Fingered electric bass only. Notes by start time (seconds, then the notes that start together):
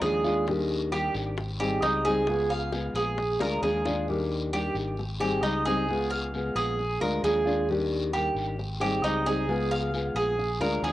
0.02 D#2
1.15 G#1
1.82 C#2
2.94 A#1
3.39 D2
3.62 D#2
4.74 G#1
5.42 C#2
6.55 A#1
7.01 D2
7.23 D#2
8.35 G#1
9.03 C#2
10.14 A#1
10.59 D2
10.82 D#2